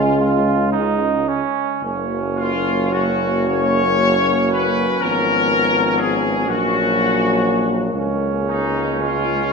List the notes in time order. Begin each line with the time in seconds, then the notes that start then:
Already playing: C#2 C#3 G#3 F4
0.18 F4
0.72 D#4
1.28 C#4
1.82 F#1 F#3 A#3 C#4
2.37 F4
2.93 F#4
3.48 C#5
4.51 B4
5.00 G#1 F3 B3 A#4
5.98 G#4
6.46 A#1 F#3 A#3 F#4
7.93 C#2 G#3 C#4
8.47 D#4
9.01 F4
9.49 G#3